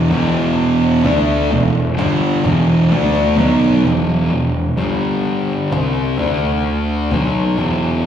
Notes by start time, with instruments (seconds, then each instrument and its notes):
Already playing: distorted electric guitar B2 E3
0.11 picked electric bass E1, distorted electric guitar E2 B2 E3, cajon bass
1.04 picked electric bass D2, distorted electric guitar D3 A3 D4, cajon bass
1.51 picked electric bass E1, distorted electric guitar E2 B2
1.97 picked electric bass G1, distorted electric guitar G2 D3 G3, cajon slap
2.44 picked electric bass E1, distorted electric guitar E2 B2 E3, cajon bass
2.91 picked electric bass D2, distorted electric guitar D3 A3 D4, cajon slap
3.15 cajon slap
3.37 picked electric bass B1, distorted electric guitar B2 F#3 B3, cajon bass
3.61 cajon bass
3.83 picked electric bass E1, distorted electric guitar E2 B2 E3, cajon bass
4.30 picked electric bass E1, distorted electric guitar E2 B2
4.77 picked electric bass G1, distorted electric guitar G2 D3 G3, cajon bass
5.71 picked electric bass C2, distorted electric guitar C3 G3 C4, cajon slap
6.18 picked electric bass D2, distorted electric guitar D3 A3 D4, cajon bass
7.11 picked electric bass B1, distorted electric guitar B2 F#3 B3, cajon bass
7.58 picked electric bass E1, distorted electric guitar E2 B2 E3, cajon bass